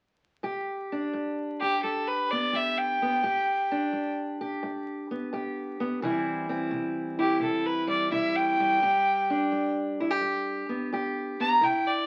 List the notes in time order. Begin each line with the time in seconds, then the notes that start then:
0.43 G2 G4
0.92 D4
1.13 G2
1.60 G4
1.83 G2 A4
2.07 B4
2.30 B3 D5
2.53 G2 G4 E5
2.78 G5
3.02 B3
3.23 G2 G4
3.71 D4
3.93 G2
4.41 G4
4.63 G2
5.11 B3
5.33 G2 G4
5.80 B3
6.02 C3 E3 G3 C4 E4
6.49 C4
6.71 C3
7.19 E4 G4
7.40 C3 A4
7.66 B4
7.87 G3 D5
8.11 C3 E4 E5
8.35 G5
8.60 G3
8.82 G2 G4
9.30 D4
9.52 G2
10.00 E4
10.11 G4
10.21 G2
10.69 B3
10.93 G2 G4
11.40 B3 A#5
11.61 C3 E4 G5
11.87 D5